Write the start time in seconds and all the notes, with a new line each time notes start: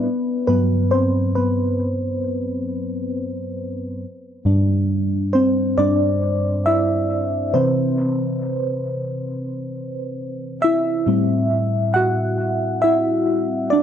Already playing: B3 B4
0.47 G2 F#3 B3 B4
0.91 C4 C5
1.35 B3 B4
4.45 G2 G3 D4
5.33 C4 C5
5.78 G2 G3 D4 D5
6.66 E4 E5
7.54 C3 E3 C4 B4 C5
10.62 E4 E5
11.07 A2 G3 C4
11.94 F#4 F#5
12.82 E4 E5
13.70 D4 D5